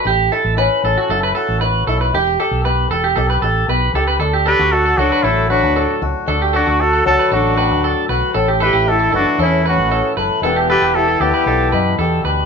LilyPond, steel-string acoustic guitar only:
\new Staff \with { instrumentName = "Steel-string acoustic guitar" } { \time 4/4 \key d \major \tempo 4 = 116 << { a8 e'8 cis'8 a'8 e'8 fis'4 e'8 | r8 g'4 g'8 g'8 g'4 g'8 | r8 d'8 fis'8 d'8 d'4 d'8 fis'8~ | fis'8 d'8 fis'8 d'8 d'4 r8 fis'8 |
r8 e'8 e'8 e'8 cis'4 e'8 a'8 | <b d' g'>8 g'8 g'8 d'8 d'4 g'8 g'8 | } \\ { a,4 e4 a,4 e4 | e4 b4 b,4 b4 | d4. fis4 a,4. | d4. fis4 a,4. |
a,4. e4 a,4. | e4. b4 b,4. | } >> }